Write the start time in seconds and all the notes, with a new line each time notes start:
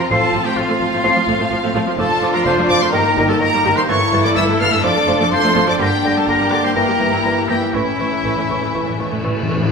Already playing: C4 F4
0.00 A#5
0.10 A1 A2 F3 A3 C4 F4 A4 A5 C7
0.33 A1 A2 F3
0.44 A2 F3 A3 G4 G5
0.56 A1 A2 F3 A3 F4 F5
0.69 A2 F3 A3
0.80 A1 A2 F3
0.92 A2 F3 A3
1.03 A1 A2 F3 A3 C4 F4 C7
1.15 A2 F3
1.27 A1 A2 F3 A3
1.39 A2 F3 A3
1.51 A1 A2 F3
1.62 A2 F3 A3
1.74 A1 A2 F3 A3
1.86 A2 F3
1.98 F1 F2 F3 A3 D4 F4 A4 A5 D6
2.21 F1 F2 F3 D6
2.34 F2 F3 A3 A#4 A#5
2.45 F1 F2 F3 A3 C5 C6 D6
2.58 F2 F3 A3
2.69 F1 F2 F3 D5 D6
2.82 F2 F3 A3 C5 C6
2.93 G1 G2 D#3 G3 A#3 D#4 G4 A#4 A#5 A#6
3.05 G2 D#3
3.17 G1 G2 D#3 G3 A#6
3.29 G2 D#3 G3 A4 A5
3.40 G1 G2 D#3 A#4 A#5 A#6
3.53 G2 D#3 G3
3.64 G1 G2 D#3 G3 A#6
3.76 G2 D#3 C5 C6
3.88 G1 G2 E3 A3 E4 A4 C#5 C#6 A6
4.12 G1 G2 E3 G3 A6
4.24 G2 E3 A3 D5 D6
4.35 G1 G2 E3 A3 E5 E6 A6
4.48 G2 E3 A3
4.60 G1 G2 E3 G3 F5 F6 A6
4.71 G2 E3 A3 E5 E6
4.83 F1 F2 F3 A3 D4 D5 D6 A6
4.95 F2 F3
5.07 F1 F2 F3 A3 A6
5.20 F2 F3 A3 D5 D6
5.32 F1 F2 F3 C5 C6 A6
5.43 F2 F3 A3
5.55 F1 F2 F3 A3 A6
5.67 F2 F3 D5 D6
5.79 G1 G2 D3 G3 A#3 G4 G5 A#6
6.03 G1 G2 D3 G3 A#6
6.16 G2 G3 A#3 A4 A5
6.27 G1 G2 D3 G3 A#3 A#4 A#5 A#6
6.39 G2 G3 A#3
6.51 G1 G2 D3 G3 D5 D6 A#6
6.62 G2 G3 A#3 C5 C6
6.75 G1 G2 E3 A#3 E4 A#4 A#5 A#6
6.88 G2 E3 G3
6.99 G1 G2 E3 A#3 A#6
7.12 G2 E3 A#3
7.24 G1 G2 E3 G3 A#6
7.36 G2 E3 A#3
7.48 G1 G2 E3 A#3 G4 G5 A#6
7.61 G2 E3 G3
7.73 A1 A2 E3 A3 C#4 E4 E5 C#6
7.82 A2
7.90 A2
7.98 A1 A2 E3 C#6
8.06 A2
8.11 A2 E3 A3
8.21 A1 A2 E3 A3
8.25 A2 C#6
8.36 A2 E3 A3
8.44 A2
8.49 A1 A2 E3 C#6
8.59 A2 E3 A3
8.67 A2
8.74 A1 A2 E3 A3 C#6
8.83 A2
8.87 A2 E3
8.97 A1 A2 E3 A3 C#6
9.05 A2
9.11 A2 E3 A3
9.20 A2 E3 C#6
9.24 A1 A2 E3
9.35 A2 E3 A3
9.43 A2
9.48 A1 A2 E3 A3 C#6
9.58 A2 E3
9.62 A2